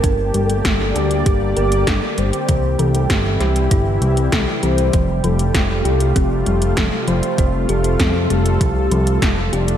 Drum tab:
HH |x-xxx-xxx-xxx-xx|x-xxx-xxx-xxx-xx|x-xxx-xxx-xxx-xx|x-xxx-xxx-xxx-xx|
SD |----o-------o---|----o-o-----o---|----o-------o---|----o-------o---|
BD |o---o---o---o---|o---o---o---o---|o---o---o---o---|o---o---o---o---|